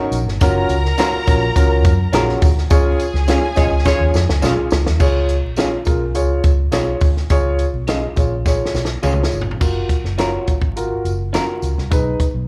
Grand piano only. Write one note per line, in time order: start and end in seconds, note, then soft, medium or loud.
0.00 0.15 C#4 medium
0.00 0.15 D#4 medium
0.00 0.16 F#4 medium
0.00 0.16 A#4 medium
0.41 0.73 C#4 loud
0.41 0.73 F4 loud
0.41 0.73 F#4 loud
0.41 0.73 A#4 loud
0.98 1.14 C#4 medium
0.98 1.14 F4 medium
0.98 1.14 F#4 medium
0.98 1.14 A#4 medium
1.27 1.43 C#4 medium
1.27 1.43 F4 medium
1.27 1.43 F#4 medium
1.27 1.43 A#4 medium
1.56 1.87 C#4 medium
1.56 1.87 F4 medium
1.56 1.88 F#4 medium
1.56 1.88 A#4 loud
2.13 2.45 C#4 medium
2.13 2.45 F4 medium
2.13 2.45 F#4 medium
2.13 2.45 G#4 medium
2.70 3.02 C#4 medium
2.70 3.02 F4 loud
2.70 3.02 G#4 loud
2.70 3.02 C#5 loud
3.27 3.43 C#4 medium
3.27 3.43 F4 medium
3.27 3.44 G#4 medium
3.27 3.44 C#5 medium
3.55 3.72 C#4 medium
3.55 3.72 F4 medium
3.55 3.72 G#4 medium
3.55 3.72 D#5 medium
3.85 4.17 C#4 medium
3.85 4.17 F4 medium
3.85 4.17 G#4 medium
3.85 4.17 C#5 medium
4.42 4.74 C#4 medium
4.42 4.74 F4 medium
4.42 4.74 G#4 medium
4.42 4.74 C#5 medium
4.99 5.32 F4 medium
4.99 5.32 G#4 medium
4.99 5.32 C#5 loud
5.57 5.73 F4 medium
5.57 5.73 G#4 medium
5.57 5.74 C#5 medium
5.86 6.02 F4 medium
5.86 6.02 G#4 medium
5.86 6.02 A#4 medium
6.15 6.47 F4 medium
6.15 6.47 G#4 medium
6.15 6.47 C#5 medium
6.71 7.04 F4 medium
6.71 7.04 G#4 medium
6.71 7.04 C#5 medium
7.31 7.62 F4 loud
7.31 7.62 G#4 medium
7.31 7.63 C#5 loud
7.88 8.04 F4 medium
7.88 8.04 G#4 medium
7.88 8.04 D#5 medium
8.16 8.32 F4 medium
8.16 8.32 G#4 medium
8.16 8.33 C#5 medium
8.45 8.77 F4 medium
8.45 8.77 G#4 medium
8.45 8.78 C#5 medium
9.02 9.35 F4 medium
9.02 9.35 G#4 medium
9.02 9.35 C#5 medium
9.60 9.92 F4 medium
9.60 9.92 F#4 medium
9.60 9.93 A#4 medium
10.18 10.50 F4 medium
10.18 10.50 F#4 medium
10.18 10.51 C#5 medium
10.76 11.08 F4 medium
10.76 11.08 F#4 medium
10.76 11.08 A#4 medium
11.33 11.65 F4 medium
11.33 11.65 F#4 medium
11.33 11.66 A#4 medium
11.90 12.23 D#4 medium
11.90 12.23 G#4 medium
11.90 12.23 B4 medium